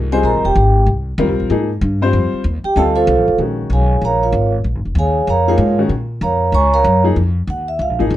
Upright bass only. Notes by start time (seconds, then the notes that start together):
Already playing: C2
0.23 A#1
0.34 G#1
0.44 D#1
0.55 G#1
0.86 C2
1.18 D#2
1.29 C2
1.40 A#1
1.50 G#2
1.81 G2
2.13 F2
2.33 muted upright bass stroke
2.44 D#2
2.64 muted upright bass stroke
2.76 D2
3.07 C2
3.17 A1
3.28 F1
3.38 A#1
3.70 B1
4.01 A#1
4.32 G#1
4.64 A#1
4.75 G#1
4.85 F1
4.95 D#2
5.27 F2
5.58 G#2
5.89 A#2
6.21 F2
6.52 C#2
6.84 F#2
7.16 F2
7.47 D#2
7.79 C#2
7.89 A#1
8.00 G#1
8.10 B1